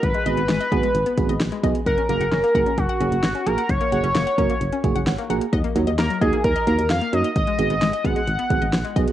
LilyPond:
<<
  \new Staff \with { instrumentName = "Analog synth lead" } { \time 4/4 \key ges \major \tempo 4 = 131 ces''2.~ ces''8 r8 | bes'8 bes'8 bes'4 ges'4. bes'8 | des''2.~ des''8 r8 | r4 bes'8 aes'8 bes'8 bes'8 f''8 ees''8 |
ees''4. ges''2 r8 | }
  \new Staff \with { instrumentName = "FM electric piano" } { \time 4/4 \key ges \major r8 <ces' ges' aes'>8 r8 <ces' ges' aes'>8 r8 <ces' ges' aes'>8 r8 <ces' ges' aes'>8 | r8 <bes ges' aes'>8 r8 <bes ges' aes'>8 r8 <bes ges' aes'>8 r8 <bes ges' aes'>8 | r8 <bes ges' aes'>8 r8 <bes ges' bes'>8 r8 <bes ges' aes'>8 ges''8 <bes ges' aes' bes''>8 | r8 <bes ees' ges'>8 r8 <bes ees' ges'>8 r8 <bes ees' ges'>8 r8 <bes ees' ges'>8 |
r8 <ces' ges' aes'>8 r8 <ces' ges' aes'>8 r8 <ces' ges' aes'>8 r8 <ces' ges' aes'>8 | }
  \new Staff \with { instrumentName = "Synth arpeggio sound" } { \time 4/4 \key ges \major r16 aes16 ees''16 ces'16 aes16 ees''16 ces'16 aes16 r16 ces'16 r16 ees''16 r16 aes16 ees''16 r16 | ges''16 des'16 bes16 ges''16 des'16 bes16 ges''16 des'16 r16 ges''16 des'16 r8 des'16 bes16 ges''16 | r16 bes16 ges''16 des'16 bes16 ges''16 des'16 bes16 r16 des'16 r16 ges''16 r16 bes16 ges''16 r16 | ees''16 bes16 ges16 ees''16 bes16 ges16 ees''16 bes16 r16 ees''16 bes16 r8 bes16 ges16 ees''16 |
r16 aes16 ees''16 ces'16 aes16 ees''16 ces'16 aes16 r16 ces'16 r16 ees''16 r16 aes16 ees''16 r16 | }
  \new Staff \with { instrumentName = "FM bass" } { \clef bass \time 4/4 \key ges \major aes,,16 r16 aes,,16 aes,,16 aes,,16 r16 aes,,16 r16 aes,,16 r16 aes,,16 aes,,16 bes,,16 r16 ces,16 r16 | ges,,16 r16 ges,,16 ges,,16 ges,,16 r16 ges,,16 r16 ges,,16 r16 ges,,16 ges,,16 aes,,16 r16 bes,,16 r16 | ges,,16 r16 ges,,16 ges,,16 ges,,16 r16 ges,,16 r16 ges,,16 r16 ges,,16 ges,,16 aes,,16 r16 bes,,16 r16 | ees,16 r16 ees,16 ees,16 ees,16 r16 ees,16 r16 ees,16 r16 ees,16 ees,16 f,16 r16 ges,16 r16 |
aes,,16 r16 aes,,16 aes,,16 aes,,16 r16 aes,,16 r16 aes,,16 r16 aes,,16 aes,,16 bes,,16 r16 ces,16 r16 | }
  \new DrumStaff \with { instrumentName = "Drums" } \drummode { \time 4/4 <hh bd>16 hh16 hh16 hh16 <hh sn>16 hh16 <hh bd>16 hh16 hh16 hh16 <hh bd>16 hh16 <hh sn>16 hh16 <hh bd>16 hh16 | <hh bd>16 hh16 hh16 hh16 <hh sn>16 hh16 <hh bd>16 hh16 <hh bd>16 hh16 hh16 hh16 <hh sn>16 hh16 hh16 hh16 | <hh bd>16 hh16 hh16 hh16 <hh sn>16 hh16 <hh bd>16 hh16 hh16 hh16 <hh bd>16 hh16 <hh sn>16 hh16 hh16 hh16 | <hh bd>16 hh16 hh16 hh16 <hh sn>16 hh16 <hh bd>16 hh16 <hh bd>16 hh16 hh16 hh16 <hh sn>16 hh16 hh16 hh16 |
<hh bd>16 hh16 hh16 hh16 <hh sn>16 hh16 <hh bd>16 hh16 hh16 hh16 <hh bd>16 hh16 <hh sn>16 hh16 <hh bd>16 hh16 | }
>>